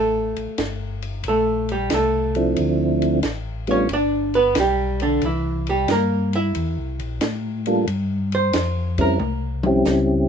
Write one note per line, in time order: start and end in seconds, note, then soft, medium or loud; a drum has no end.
0.00 0.34 A1 medium
0.00 1.01 A3 medium
0.00 1.01 A4 medium
0.36 0.48 A1 soft
0.36 ride soft
0.58 1.23 G1 medium
0.58 snare medium
0.58 hi-hat pedal soft
0.58 ride medium
1.02 ride soft
1.24 1.89 A#1 medium
1.24 ride medium
1.28 1.71 A3 medium
1.28 1.70 A4 medium
1.69 1.92 G3 medium
1.69 1.92 G4 medium
1.69 ride soft
1.90 2.56 C2 medium
1.90 snare medium
1.90 hi-hat pedal medium
1.90 ride medium
1.94 3.00 A3 medium
1.94 3.00 A4 medium
2.35 3.20 F3 medium
2.35 3.20 A3 medium
2.35 3.20 C4 medium
2.35 3.20 D4 medium
2.35 3.20 E4 medium
2.35 ride soft
2.56 3.22 D2 medium
2.56 ride medium
3.02 ride soft
3.23 3.88 A1 medium
3.23 snare medium
3.23 hi-hat pedal soft
3.23 ride medium
3.67 3.88 G3 medium
3.67 3.88 A3 medium
3.67 3.88 B3 medium
3.67 3.88 D4 medium
3.67 3.88 F4 medium
3.67 3.91 C#5 medium
3.67 ride soft
3.71 3.91 C#4 medium
3.89 4.54 G1 medium
3.89 ride medium
3.93 4.36 D4 medium
3.93 4.35 D5 medium
4.34 4.56 B3 medium
4.34 4.56 B4 medium
4.34 ride soft
4.55 5.21 B1 medium
4.55 snare medium
4.55 hi-hat pedal medium
4.55 ride medium
4.60 5.02 G3 medium
4.60 5.02 G4 medium
5.00 5.23 D3 medium
5.00 5.23 D4 medium
5.00 ride soft
5.22 5.87 C2 medium
5.22 5.67 E3 soft
5.22 5.67 E4 medium
5.22 ride medium
5.67 5.89 G3 medium
5.67 5.89 G4 medium
5.67 ride soft
5.88 6.53 G2 medium
5.88 6.34 A#3 medium
5.88 6.34 A#4 medium
5.88 snare medium
5.88 hi-hat pedal medium
5.88 ride medium
6.33 7.85 E4 medium
6.33 7.84 E5 medium
6.33 ride soft
6.55 6.77 E2 medium
6.55 ride medium
6.77 6.99 C2 medium
6.99 7.20 A#1 medium
6.99 ride soft
7.21 7.86 A2 medium
7.21 snare medium
7.21 hi-hat pedal medium
7.21 ride medium
7.66 7.86 G3 medium
7.66 7.86 A#3 medium
7.66 7.86 D4 medium
7.66 7.86 F4 medium
7.66 7.86 A4 medium
7.66 ride soft
7.88 8.52 G2 medium
7.88 ride medium
8.32 8.96 C5 medium
8.32 ride soft
8.53 9.18 F2 medium
8.53 snare medium
8.53 hi-hat pedal medium
8.53 ride medium
8.98 9.18 G3 medium
8.98 9.18 C4 medium
8.98 9.18 C#4 medium
8.98 9.18 E4 medium
8.98 9.18 A#4 medium
8.98 9.62 A#4 medium
8.98 kick medium
8.98 ride soft
9.20 9.84 C2 medium
9.20 high tom soft
9.63 10.29 G3 medium
9.63 10.29 C4 medium
9.63 10.29 C#4 medium
9.63 10.29 E4 medium
9.63 10.29 G4 medium
9.63 mid tom medium
9.85 10.29 C#2 medium
9.85 snare medium
9.85 hi-hat pedal medium